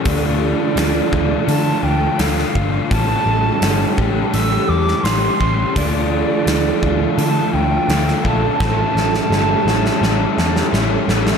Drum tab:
HH |o---o---o---o---|o---o---o---o---|o---o---o---o---|----------------|
SD |----o-------oo--|----o------oo---|----o-------oo--|o-ooo-ooo-ooo-oo|
BD |o-----o-------o-|o-----o-------o-|o-----o-------o-|o---------------|